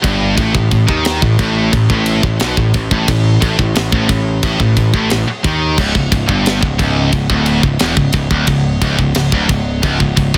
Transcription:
0.03 G1 G2, kick, ride
0.36 A1 A2, kick, ride
0.54 A1 A2, kick
0.71 A1 A2, kick, ride
0.87 D#2 D#3, kick
1.05 snare, ride
1.22 A1 A2, kick
1.39 A1 A2, kick, ride
1.73 A1 A2, kick, ride
1.90 A1 A2, kick
2.06 ride
2.23 A1 A2, kick
2.40 B1 B2, snare, ride
2.57 A1 A2, kick
2.74 A1 A2, kick, ride
2.91 A1 A2, kick
3.08 A1 A2, kick, ride
3.42 A1 A2, kick, ride
3.59 A1 A2, kick
3.75 A1 A2, snare, ride
3.92 A1 A2, kick
4.09 A1 A2, kick, ride
4.43 A1 A2, kick, ride
4.60 A1 A2, kick
4.77 A1 A2, kick, ride
4.93 A1 A2, kick
5.10 A1 A2, snare, ride
5.27 muted picked electric bass stroke, muted distorted electric guitar stroke
5.44 D#2 D#3, kick, ride
5.78 C#1 C#2, kick, crash
5.95 C#1 C#2, kick
6.12 C#1 C#2, kick, ride
6.28 G1 G2, kick
6.46 snare, ride
6.61 C#1 C#2, kick
6.79 C#1 C#2, kick, ride
7.12 C#1 C#2, kick, ride
7.30 D1 D2, kick
7.46 ride
7.63 C#1 C#2, kick
7.79 E1 E2, snare, ride
7.96 C#1 C#2, kick
8.13 C#1 C#2, kick, ride
8.30 D1 D2, kick
8.47 C#1 C#2, kick, ride
8.82 C#1 C#2, kick, ride
8.99 C#1 C#2, kick
9.15 C#1 C#2, snare, ride
9.32 D1 D2, kick
9.49 C#1 C#2, kick, ride
9.83 C#1 C#2, kick, ride
10.00 C#1 C#2, kick
10.17 C#1 C#2, kick, ride
10.34 D1, kick

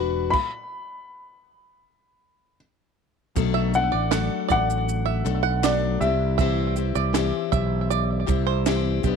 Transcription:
Already playing: E1 F#4 B4 B5
0.00 D4
0.30 B5, kick, crash
3.36 B1 B2 F#3 A3 D4 A4, kick, shaker
3.54 E5
3.74 A3 D4 A4 F#5, shaker
3.92 A1 D5
4.11 F#3 A3 D4 A4 F#5, snare, clap, shaker
4.49 A1 D5 F#5, kick, shaker
4.70 shaker
4.89 shaker
5.06 E5
5.25 B1 A3 D4 A4, clap, shaker
5.43 F#5
5.63 F#3 A3 D4 A4 D5, snare, clap, shaker
6.00 C2 C4 E4 G4 E5, shaker
6.38 C3 E3 C4 E4 G4 E5, kick, shaker
6.76 C4 E4 G4, shaker
6.95 C2 D5, shaker
7.13 E3 C4 E4 G4, snare, clap, shaker
7.52 B1 E5, kick, shaker
7.90 D5, shaker
8.27 C2 C4 E4 G4, kick, clap, shaker
8.47 C5
8.66 E3 C4 E4 G4, snare, clap, shaker
9.04 B1 B3 D4 G4, kick, shaker

